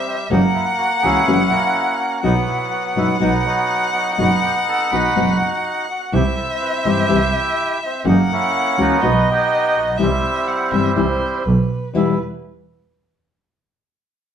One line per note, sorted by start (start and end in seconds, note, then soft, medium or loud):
0.00 0.27 G3 medium
0.00 0.32 E5 loud
0.07 0.18 C4 medium
0.30 0.51 F#1 loud
0.30 0.39 C#3 medium
0.30 0.39 E3 medium
0.30 0.39 A#3 loud
0.30 0.40 C#4 loud
0.30 0.42 D#4 medium
0.30 0.40 F#4 medium
0.30 2.23 F#5 loud
0.34 1.24 A#3 medium
0.55 0.65 E4 medium
0.78 0.89 F#4 loud
1.02 1.23 C#2 medium
1.02 1.20 C#3 medium
1.02 1.20 E3 medium
1.02 1.20 A#3 medium
1.02 1.20 C#4 medium
1.02 1.51 C#4 medium
1.02 1.96 E4 medium
1.02 1.20 F#4 medium
1.02 1.43 G#4 loud
1.27 1.47 F#1 loud
1.27 1.36 C#3 loud
1.27 1.36 E3 loud
1.27 1.36 A#3 loud
1.27 1.36 C#4 loud
1.27 1.36 F#4 loud
1.45 1.51 G#4 medium
1.51 2.20 A#3 medium
1.51 2.20 C#4 medium
1.51 1.96 F#4 loud
1.99 2.21 F#4 medium
2.23 2.44 B1 medium
2.23 2.32 B2 medium
2.23 2.32 F#3 medium
2.23 3.17 F#3 medium
2.23 2.32 B3 loud
2.23 3.17 B3 medium
2.23 2.32 D#4 loud
2.23 2.34 D#4 loud
2.23 2.32 F#4 medium
2.23 6.15 F#5 loud
2.47 2.70 E4 medium
2.73 2.84 F#4 medium
2.96 3.17 F#1 medium
2.96 3.13 B2 medium
2.96 3.13 F#3 medium
2.96 3.13 B3 medium
2.96 3.13 D#4 medium
2.96 3.08 E4 loud
2.96 3.14 F#4 medium
3.20 3.41 B1 loud
3.20 3.29 B2 medium
3.20 3.29 F#3 loud
3.20 4.16 F#3 medium
3.20 3.29 B3 loud
3.20 3.46 B3 medium
3.20 3.30 D#4 loud
3.20 3.46 D#4 loud
3.20 3.30 F#4 loud
3.46 4.20 B3 medium
3.46 3.94 D#4 medium
3.46 3.96 F#4 loud
3.95 4.18 D#4 medium
4.18 4.39 F#1 loud
4.18 4.27 B2 medium
4.18 4.28 F#3 medium
4.18 4.27 B3 medium
4.18 5.13 B3 medium
4.18 4.28 D#4 medium
4.18 4.92 D#4 medium
4.18 4.28 F#4 medium
4.18 4.31 F#4 loud
4.44 4.54 G4 medium
4.69 4.91 A4 loud
4.91 5.12 B1 medium
4.91 5.09 B2 medium
4.91 5.09 F#3 medium
4.91 5.09 B3 medium
4.91 5.09 D#4 medium
4.91 5.86 D#4 medium
4.91 5.85 F#4 medium
4.91 5.09 F#4 medium
4.91 5.37 B4 loud
5.16 5.37 F#1 loud
5.16 5.25 B2 medium
5.16 5.25 F#3 loud
5.16 5.25 B3 loud
5.16 5.25 D#4 loud
5.16 5.26 F#4 loud
5.90 6.15 F#4 medium
6.12 6.33 C2 loud
6.12 6.22 C3 medium
6.12 6.22 E3 medium
6.12 6.22 G3 medium
6.12 6.22 C4 loud
6.12 7.07 C4 medium
6.12 6.22 E4 medium
6.12 6.87 E4 medium
6.12 6.36 G4 medium
6.12 8.06 E5 loud
6.37 6.48 A4 medium
6.61 6.72 B4 loud
6.84 7.06 G1 medium
6.84 7.02 C3 medium
6.84 7.02 E3 medium
6.84 7.02 G3 medium
6.84 7.02 C4 medium
6.84 7.02 E4 medium
6.84 7.79 G4 medium
6.84 7.30 C5 loud
6.88 7.79 E4 medium
7.08 7.30 C2 loud
7.08 7.18 C3 loud
7.08 7.18 E3 loud
7.08 7.18 G3 loud
7.08 7.18 C4 loud
7.08 7.18 E4 loud
7.86 8.06 C4 medium
8.04 8.26 F#1 loud
8.04 8.14 C#3 medium
8.04 8.14 E3 medium
8.04 8.14 A#3 loud
8.04 8.31 A#3 medium
8.04 8.14 C#4 medium
8.04 8.15 F#4 medium
8.04 9.03 F#5 loud
8.08 8.19 D#4 loud
8.32 9.00 A#3 medium
8.32 9.00 C#4 medium
8.32 8.77 E4 loud
8.77 8.99 C#2 medium
8.77 8.95 C#3 medium
8.77 8.95 E3 medium
8.77 8.95 A#3 medium
8.77 8.95 C#4 medium
8.77 8.95 F#4 medium
8.82 9.30 B3 medium
8.82 9.29 D#4 medium
8.82 9.30 F#4 loud
9.02 9.23 B1 loud
9.02 9.11 B2 loud
9.02 9.12 F#3 loud
9.02 9.12 B3 loud
9.02 9.12 D#4 loud
9.02 9.12 F#4 loud
9.02 9.99 D#5 loud
9.31 9.97 B3 medium
9.31 9.97 D#4 medium
9.31 9.78 G4 loud
9.75 9.99 A#1 medium
9.75 9.88 F#4 loud
9.97 10.19 C2 medium
9.97 10.07 C3 medium
9.97 10.08 E3 medium
9.97 10.08 G3 loud
9.97 10.08 C4 loud
9.97 10.08 E4 loud
9.97 10.50 E5 loud
10.02 11.43 G3 medium
10.02 11.43 C4 medium
10.02 11.43 E4 loud
10.48 10.73 F#5 medium
10.71 10.92 G1 medium
10.71 10.88 C3 medium
10.71 10.89 E3 medium
10.71 10.89 G3 medium
10.71 10.89 C4 medium
10.71 10.89 E4 medium
10.71 10.96 E5 medium
10.96 11.17 C2 loud
10.96 11.05 C3 medium
10.96 11.05 E3 loud
10.96 11.05 G3 medium
10.96 11.05 C4 loud
10.96 11.05 E4 loud
10.96 11.47 C5 medium
11.45 11.66 B1 loud
11.45 11.93 B4 medium
11.94 12.14 E2 medium
11.94 12.15 E2 medium
11.94 12.14 B2 medium
11.94 12.14 E3 medium
11.94 12.14 G3 medium
11.94 12.15 B3 medium
11.94 12.15 E4 medium
11.94 12.18 E4 medium
11.94 12.17 B4 medium